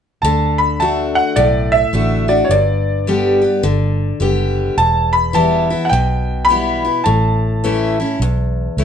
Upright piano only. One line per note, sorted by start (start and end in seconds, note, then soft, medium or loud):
0.22 0.58 A5 medium
0.58 0.80 B5 medium
0.80 0.88 A5 medium
1.15 1.37 F#5 medium
1.36 1.72 D5 medium
1.72 2.30 E5 medium
2.29 2.45 D5 medium
2.45 2.50 C#5 medium
2.51 4.17 D5 medium
4.78 5.14 A5 medium
5.13 5.35 B5 medium
5.35 5.88 A5 medium
5.85 5.91 F#5 medium
5.89 6.49 G5 medium
6.45 7.05 B5 loud
7.04 8.71 A5 medium